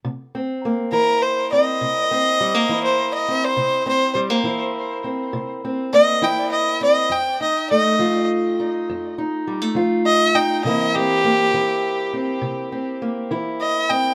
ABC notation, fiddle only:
X:1
M:12/8
L:1/16
Q:3/8=68
K:Cmix
V:1 name="Fiddle"
z6 B2 c2 _e8- e c2 e2 c- | c2 c2 z12 _e2 g2 e2 e2 | g2 _e2 e4 z12 e2 g2 | _e2 G8 z8 z2 e2 g2 |]